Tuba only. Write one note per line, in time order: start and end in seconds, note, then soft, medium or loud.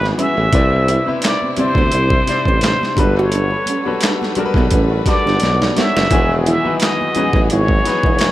0.00 0.12 G#1 medium
0.37 0.50 A1 medium
0.53 0.97 C2 loud
1.07 1.13 D2 medium
1.58 1.65 D2 medium
1.75 1.89 D2 medium
1.93 2.21 C2 medium
2.46 2.74 A1 medium
2.97 3.54 G1 medium
3.86 3.92 B1 medium
4.37 4.44 B1 soft
4.54 4.68 B1 medium
4.72 5.00 A1 medium
5.26 5.39 G1 medium
5.42 5.70 B1 medium
5.95 6.08 F#1 medium
6.11 6.55 E1 loud
6.65 6.72 A1 soft
7.16 7.24 A1 soft
7.34 7.47 A1 medium
7.51 7.79 G#1 loud
8.04 8.32 E1 medium